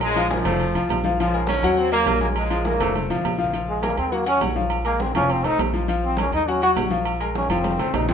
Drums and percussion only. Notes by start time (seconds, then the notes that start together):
0.01 high conga, low agogo
0.16 high conga, low agogo
0.30 high conga, low timbale
0.45 high conga, low conga, low agogo
0.60 high conga, low agogo
0.74 high conga, low agogo
0.89 high conga, low timbale, low agogo
1.04 high conga
1.19 high conga, low agogo
1.33 high conga
1.47 high conga, low timbale, low agogo
1.62 high conga, low agogo
1.76 high conga
1.91 high conga, low agogo
2.05 high conga, low timbale, low agogo
2.20 high conga
2.36 high conga, low agogo
2.50 high conga, low agogo
2.65 high conga, low timbale
2.80 high conga, low conga, low agogo
2.95 high conga, low agogo
3.11 low agogo
3.15 low conga
3.25 low timbale, low agogo
3.44 low conga
3.54 high conga, low agogo
3.68 high conga
3.83 high conga, low timbale, low agogo
3.97 high conga, low agogo
4.12 high conga
4.26 high conga, low agogo
4.41 high conga, low timbale, low agogo
4.56 high conga
4.70 high conga, low agogo
4.85 high conga, low agogo
5.00 high conga, low timbale
5.15 high conga, low conga, low agogo
5.29 high conga, low agogo
5.44 high conga, low agogo
5.59 high conga, low timbale, low agogo
5.73 high conga
5.88 high conga, low agogo
6.03 high conga
6.17 high conga, low timbale, low agogo
6.32 high conga, low agogo
6.47 high conga
6.62 high conga, low agogo
6.76 high conga, low timbale, low agogo
6.91 high conga
7.05 high conga, low agogo
7.21 high conga, low agogo
7.35 high conga, low timbale
7.50 high conga, low agogo
7.64 high conga, low agogo
7.79 low conga, low agogo
7.94 low conga, low timbale, low agogo
8.09 low conga